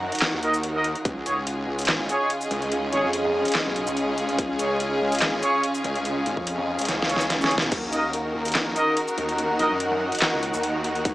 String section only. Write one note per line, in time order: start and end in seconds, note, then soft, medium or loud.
0.00 1.01 D#3 medium
0.00 1.01 D#4 medium
0.00 1.01 F#4 medium
0.00 1.01 A#4 medium
1.05 7.68 C#3 medium
1.05 7.68 C#4 medium
1.05 7.68 F4 medium
1.05 7.68 G#4 medium
7.72 11.14 D#3 medium
7.72 11.14 D#4 medium
7.72 11.14 F#4 medium
7.72 11.02 A#4 medium
11.05 11.14 G#4 medium